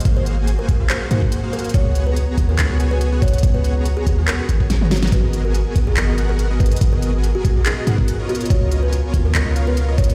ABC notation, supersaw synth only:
X:1
M:4/4
L:1/16
Q:"Swing 16ths" 1/4=142
K:G#m
V:1 name="Supersaw synth"
[A,FG^B^e]3 [A,FGBg]4 [A,FGBe]3 [A,FGBf]3 [A,FGBe]3 | [B,FGcf]3 [B,FGca]4 [B,FGcf]3 [B,FGcg]3 [B,FGcf]3 | [B,FGcf]3 [B,FGca]4 [B,FGcf]3 z [B,FGcg] [B,FGca]4 | [B,FGAd]3 [B,FGAg]4 [B,FGAd]3 [B,FGAf]3 [B,FGAd]3 |
[B,FGAd]3 [B,FGAg]4 [B,FGAd]3 [B,FGAf]3 [B,^EAcd]3 | [B,^EAcd]3 [B,EAcg]4 [B,EAcd]3 [B,EAc^e]3 [B,EAcd]3 |]